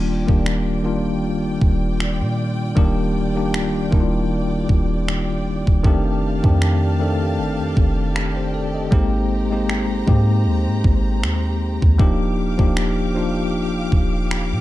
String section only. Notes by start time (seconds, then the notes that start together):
Already playing: F4 D5 G5
5.83 G4 F5 A5
8.92 C5 A#5
12.00 G4 F5 D6